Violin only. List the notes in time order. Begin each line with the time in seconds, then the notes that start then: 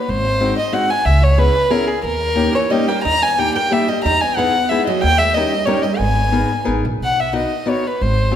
Already playing: B4
0.09 C5
0.59 D#5
0.73 F#5
0.90 G#5
1.05 E5
1.23 C#5
1.38 B4
1.70 A#4
1.87 G#4
2.05 A#4
2.55 C#5
2.70 D#5
2.88 G5
3.04 A#5
3.22 G#5
3.38 G5
3.55 G5
3.72 E5
3.88 D#5
4.04 A#5
4.21 G#5
4.36 F#5
4.69 E5
4.87 D#5
5.01 G5
5.18 E5
5.34 D#5
5.65 C#5
5.82 D#5
5.98 G#5
7.04 F#5
7.20 E5
7.36 D#5
7.69 C#5
7.87 B4
8.01 C5